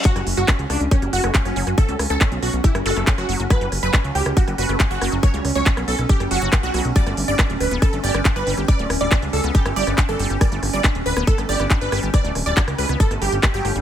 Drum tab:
HH |xxoxxxoxxxoxxxox|xxoxxxoxxxoxxxox|xxoxxxoxxxoxxxox|xxoxxxoxxxoxxxox|
CP |----x-------x---|----x-------x---|----x-------x---|----x-------x---|
SD |-r--r-r-r--r-r-r|--r-r----r-r-r--|r-r-r--r-r-r--r-|r-r--r-r-r--r-r-|
BD |o---o---o---o---|o---o---o---o---|o---o---o---o---|o---o---o---o---|

HH |xxoxxxoxxxoxxxox|xxoxxxoxxxoxxxox|xxoxxxoxxxoxxxox|xxoxxxoxxxoxxxox|
CP |----x-------x---|----x-------x---|----x-------x---|----x-------x---|
SD |-r--r-r-r--r-r-r|--r-r----r-r-r--|r-r-r--r-r-r--r-|r-r--r-r-r--r-r-|
BD |o---o---o---o---|o---o---o---o---|o---o---o---o---|o---o---o---o---|